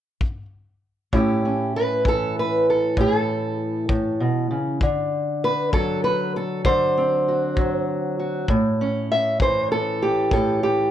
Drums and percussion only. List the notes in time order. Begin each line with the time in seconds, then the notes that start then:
0.21 kick
1.13 kick
2.05 kick
2.97 kick
3.89 kick
4.81 kick
5.73 kick
6.65 kick
7.57 kick
8.48 kick
9.40 kick
10.31 kick